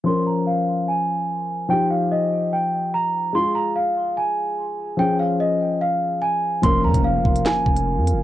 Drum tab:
HH |----------------|----------------|----------------|----------------|
CP |----------------|----------------|----------------|----------------|
SD |----------------|----------------|----------------|----------------|
BD |----------------|----------------|----------------|----------------|

HH |x--x---xx--x--x-|
CP |--------x-------|
SD |--------o-------|
BD |o--o--o---o-----|